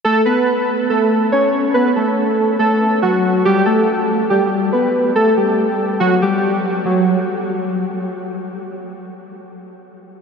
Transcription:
\new Staff \with { instrumentName = "Synth keys" } { \time 4/4 \key g \lydian \tempo 4 = 141 <a a'>8 <b b'>4. <a a'>4 <cis' cis''>4 | <b b'>8 <a a'>4. <a a'>4 <fis fis'>4 | <g g'>8 <a a'>4. <g g'>4 <b b'>4 | <a a'>8 <g g'>4. <fis fis'>8 <g g'>4. |
fis2. r4 | r1 | }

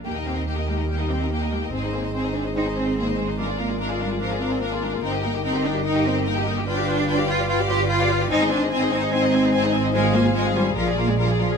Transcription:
<<
  \new Staff \with { instrumentName = "Violin section" } { \time 4/4 \key ees \major \tempo 4 = 146 g''16 ees''16 g''16 ees''16 g''16 ees''16 g''16 ees''16 g''16 ees''16 g''16 ees''16 g''16 ees''16 g''16 ees''16 | c''16 ees''16 c''16 ees''16 c''16 ees''16 c''16 ees''16 c''16 ees''16 c''16 ees''16 c''16 ees''16 c''16 ees''16 | f''16 d''16 f''16 d''16 f''16 d''16 f''16 d''16 f''16 d''16 f''16 d''16 f''16 d''16 f''16 d''16 | g''16 ees''16 g''16 ees''16 g''16 ees''16 g''16 ees''16 g''16 ees''16 g''16 ees''16 g''16 ees''16 g''16 ees''16 |
g''16 f''16 g''16 f''16 g''16 f''16 g''16 f''16 g''16 f''16 g''16 f''16 g''16 f''16 g''16 f''16 | aes''16 ees''16 aes''16 ees''16 aes''16 ees''16 aes''16 ees''16 aes''16 ees''16 aes''16 ees''16 aes''16 ees''16 aes''16 ees''16 | aes''16 f''16 aes''16 f''16 aes''16 f''16 aes''16 f''16 f''16 d''16 f''16 d''16 f''16 d''16 f''16 d''16 | }
  \new Staff \with { instrumentName = "Violin section" } { \time 4/4 \key ees \major g'16 bes'16 g'16 bes'16 g'16 bes'16 g'16 bes'16 g'16 bes'16 g'16 bes'16 g'16 bes'16 g'16 bes'16 | aes'16 c''16 aes'16 c''16 aes'16 c''16 aes'16 c''16 aes'16 c''16 aes'16 c''16 aes'16 c''16 aes'16 c''16 | bes'16 aes'16 bes'16 aes'16 bes'16 aes'16 bes'16 aes'16 bes'16 aes'16 bes'16 aes'16 bes'16 aes'16 bes'16 aes'16 | bes'16 g'16 bes'16 g'16 bes'16 g'16 bes'16 g'16 bes'16 g'16 bes'16 g'16 bes'16 g'16 bes'16 g'16 |
b'16 d''16 b'16 d''16 b'16 d''16 b'16 d''16 b'16 d''16 b'16 d''16 b'16 d''16 b'16 d''16 | c''16 aes'16 c''16 aes'16 c''16 aes'16 c''16 aes'16 c''16 aes'16 c''16 aes'16 c''16 aes'16 c''16 aes'16 | c''16 aes'16 c''16 aes'16 c''16 aes'16 c''16 aes'16 bes'16 aes'16 bes'16 aes'16 bes'16 aes'16 bes'16 aes'16 | }
  \new Staff \with { instrumentName = "French horn section" } { \time 4/4 \key ees \major << { g'1 | aes'1 | bes'1~ | bes'1 |
b'1 | c''1~ | c''2 d''2 | } \\ { ees'1~ | ees'1 | f'1 | ees'1 |
f'1 | ees'1 | f'2 aes'2 | } >> }
  \new Staff \with { instrumentName = "Viola section" } { \time 4/4 \key ees \major bes16 ees'16 bes16 ees'16 bes16 ees'16 bes16 ees'16 bes16 ees'16 bes16 ees'16 bes16 ees'16 bes16 ees'16 | c'16 ees'16 c'16 ees'16 c'16 ees'16 c'16 ees'16 c'16 ees'16 c'16 ees'16 c'16 ees'16 c'16 ees'16 | d'16 f'16 d'16 f'16 d'16 f'16 d'16 f'16 d'16 f'16 d'16 f'16 d'16 f'16 d'16 f'16 | ees'16 g'16 ees'16 g'16 ees'16 g'16 ees'16 g'16 ees'16 g'16 ees'16 g'16 ees'16 g'16 ees'16 g'16 |
f'16 g'16 f'16 g'16 f'16 g'16 f'16 g'16 f'16 g'16 f'16 g'16 f'16 g'16 f'16 g'16 | c'16 ees'16 c'16 ees'16 c'16 ees'16 c'16 ees'16 c'16 ees'16 c'16 ees'16 c'16 ees'16 c'16 ees'16 | f'16 aes'16 f'16 aes'16 f'16 aes'16 f'16 aes'16 f'16 aes'16 f'16 aes'16 f'16 aes'16 f'16 aes'16 | }
  \new Staff \with { instrumentName = "Cello section" } { \time 4/4 \key ees \major bes8 c'8 bes8 aes8 g8 c'8 bes8 aes16 bes16 | c'8 bes8 c'8 d'8 ees'8 c'8 bes8 aes8 | aes8 bes8 aes8 g8 f8 c'8 bes8 aes16 bes16 | c'8 bes8 c'8 d'8 ees'8 c'8 bes8 bes8 |
d'4. f'8 f'8 g'8 f'4 | ees'8 d'8 c'8 ees'8 c'4. r8 | aes8 bes8 aes8 g8 f8 bes16 aes16 g8 f8 | }
  \new Staff \with { instrumentName = "Double bass section" } { \clef bass \time 4/4 \key ees \major ees,1 | aes,,1~ | aes,,1 | g,,1~ |
g,,1 | aes,,1~ | aes,,2 bes,,2 | }
>>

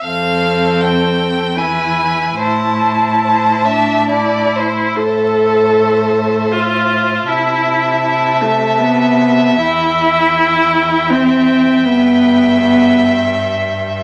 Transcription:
<<
  \new Staff \with { instrumentName = "Violin" } { \time 3/4 \key a \minor \tempo 4 = 79 f''4 g''4 gis''4 | a''2~ a''8 r8 | e''2. | a''2. |
g''2.~ | g''2. | }
  \new Staff \with { instrumentName = "Violin" } { \time 3/4 \key a \minor a'2 b'4 | c''4 c''8 e''8 d''8 c''8 | c''2. | e''2.~ |
e''2. | e''2. | }
  \new Staff \with { instrumentName = "Viola" } { \time 3/4 \key a \minor c'2 e'4 | e'4. d'8 e'4 | a'2 f'4 | e'4 e'8 a8 b4 |
e'2 c'4 | b4 b8 r4. | }
  \new Staff \with { instrumentName = "Cello" } { \clef bass \time 3/4 \key a \minor f,2 e,4 | a,2~ a,8. r16 | a,2. | c2. |
e,2. | g,2. | }
>>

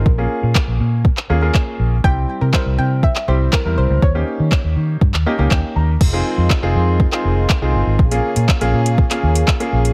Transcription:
<<
  \new Staff \with { instrumentName = "Synth pluck" } { \time 4/4 \key f \minor \tempo 4 = 121 bes'2~ bes'8. r4 r16 | g''8. bes'16 c''8 g''8 e''8 c''8 bes'8 c''8 | des''2. r4 | r1 |
r1 | }
  \new Staff \with { instrumentName = "Grand piano" } { \time 4/4 \key f \minor << { r1 | r1 | r2 r8 ees''8 g''8 bes''8 | r1 |
r1 | } \\ { r16 <bes des' f' aes'>4.~ <bes des' f' aes'>16 r8 <bes des' f' aes'>16 <bes des' f' aes'>4 r16 | <g c' e' g'>8. r16 <g c' e' bes'>4~ <g c' e' bes'>16 r16 <g c' e' g'>8. <g c' e' bes'>8. | r16 <bes des' ees' g'>4.~ <bes des' ees' g'>16 r8 <bes des' ees' g'>16 <bes des' ees' g'>4 r16 | r16 <c' ees' f' aes'>8. r16 <c' ees' f' aes'>8. r16 <c' ees' f' aes'>8. r16 <c' ees' f' aes'>8. |
r16 <bes des' f' aes'>8. r16 <bes des' f' aes'>8. r16 <bes des' f' aes'>8. r16 <bes des' f' aes'>8. | } >> }
  \new Staff \with { instrumentName = "Harmonium" } { \time 4/4 \key f \minor r1 | r1 | r1 | <ees aes f'>1 |
<des bes aes'>1 | }
  \new Staff \with { instrumentName = "Fingered electric bass" } { \clef bass \time 4/4 \key f \minor bes,,8 r16 bes,16 r16 bes,,16 bes,8. r16 ees,8 r8 bes,,8 | r8. c16 r16 c,16 c8. r16 c,8 r16 e,16 c,16 des,16 | ees,8 r16 ees16 r16 ees,16 ees8 g,16 ees,16 r16 des,16 r8 ees,8 | f,,8 r16 f,16 r16 f,,16 f,8. r16 f,,8 r16 c,16 g,,16 aes,,16 |
bes,,8 r16 bes,16 r16 bes,,16 bes,8. r16 ees,8 r8 bes,,8 | }
  \new DrumStaff \with { instrumentName = "Drums" } \drummode { \time 4/4 bd4 <hc bd>4 bd16 hc8. <hc bd>4 | bd4 <hc bd>4 bd16 hc8. <hc bd>4 | bd4 <hc bd>4 bd16 hc8. <hc bd>4 | <cymc bd>4 <hc bd>4 bd16 hc8. <hc bd>4 |
bd16 hh8 hh16 <hc bd>16 hh8 hh16 bd16 <hc hh>8 hh16 <hc bd>16 hh8 hh16 | }
>>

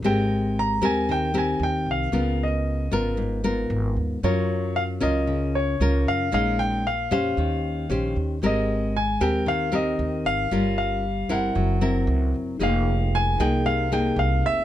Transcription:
<<
  \new Staff \with { instrumentName = "Grand piano" } { \time 4/4 \key aes \major \tempo 4 = 115 g''4 bes''8 aes''8 g''8 aes''8 g''8 f''8~ | f''8 ees''4. r2 | des''4 f''8 ees''4 des''4 f''8 | f''8 g''8 f''8 f''2 r8 |
ees''4 aes''8 g''8 f''8 ees''4 f''8~ | f''8 f''4 ges''2 r8 | f''4 aes''8 g''8 f''8 g''8 f''8 e''8 | }
  \new Staff \with { instrumentName = "Tine electric piano" } { \time 4/4 \key aes \major r1 | r1 | r1 | r1 |
r1 | r1 | <ees' aes' bes' g''>1 | }
  \new Staff \with { instrumentName = "Nylon-string guitar" } { \time 4/4 \key aes \major << { <c' g' bes'>4. <c' g' bes'>4 <c' g' bes'>4. | <ces' f' bes'>4. <ces' f' bes'>4 <ces' f' bes'>4. | <des' f' bes'>4. <des' f' bes'>4. <des' f' bes'>4 | <aes des' ees'>4 r8 <des' g' c''>4. <des' g' c''>4 |
<c' g' bes'>4 r8 <c' g' bes'>4 <c' g' bes'>4. | <des' f' bes'>4 r8 <c' e' bes'>4 <c' fes' bes'>4. | <bes ees' aes'>4. <bes ees' aes'>4 <bes ees' aes'>4. | } \\ { aes2 ees2 | des2 aes,2 | ges2 des2 | bes,2 ees2 |
aes2 ees2 | g2 ges2 | f2 c2 | } >> }
  \new Staff \with { instrumentName = "Upright bass" } { \clef bass \time 4/4 \key aes \major aes,,4. ees,4. ees,8 c,8 | des,4. aes,,4. aes,,8 ees,8 | ges,4. des,4. des,8 ges,8 | bes,,4. f,8 ees,4 bes,,8 ees,8 |
aes,,4. ees,4. ees,8 aes,,8 | g,,4. g,,8 ges,,4 des,8 ges,,8 | f,,4. c,4. c,8 f,,8 | }
>>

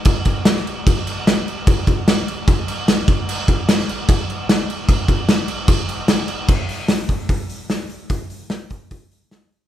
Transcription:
\new DrumStaff \with { instrumentName = "Drums" } \drummode { \time 4/4 \tempo 4 = 149 <cymc bd>8 <cymc bd>8 <cymc sn>16 sn16 cymc8 <cymc bd>8 cymc8 <cymc sn>8 cymc8 | <cymc bd>8 <cymc bd>8 <cymc sn>8 cymc8 <cymc bd>8 cymc8 <cymc sn>8 <cymc bd>8 | cymc8 <cymc bd>8 <cymc sn>16 sn16 cymc8 <cymc bd>8 cymc8 <cymc sn>8 cymc8 | <cymc bd>8 <cymc bd>8 <cymc sn>8 cymc8 <cymc bd>8 cymc8 <cymc sn>8 cymc8 |
<cymc bd>8 hho8 <hho sn>8 <hho bd>8 <hho bd>8 hho8 <hho sn>8 hho8 | <hho bd>8 hho8 <hho sn>8 <hho bd>8 <hho bd>8 hho8 <hho sn>8 hho8 | }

